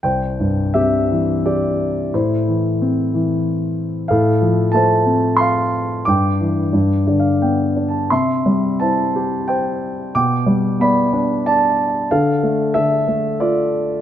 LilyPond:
<<
  \new Staff \with { instrumentName = "Grand piano" } { \time 3/4 \key c \major \tempo 4 = 90 <c'' g''>4 <g' e''>4 <g' d''>4 | <e' c''>4. r4. | <a' f''>4 <c'' a''>4 <f'' c'''>4 | <g'' d'''>4~ \tuplet 3/2 { <g'' d'''>8. d''16 f''8 g''4 a''8 } |
<e'' c'''>4 <c'' a''>4 <c'' g''>4 | <g'' d'''>4 <d'' b''>4 <d'' a''>4 | <a' f''>4 <a' e''>4 <f' d''>4 | }
  \new Staff \with { instrumentName = "Grand piano" } { \clef bass \time 3/4 \key c \major c,8 g,8 c8 e4. | a,8 e8 c'8 e4. | a,8 f8 a8 c'4. | g,8 e8 g,8 d8 b8 d'8 |
c8 g8 e'8 g'4. | b,8 g8 b8 d'4. | d8 a8 d8 a4. | }
>>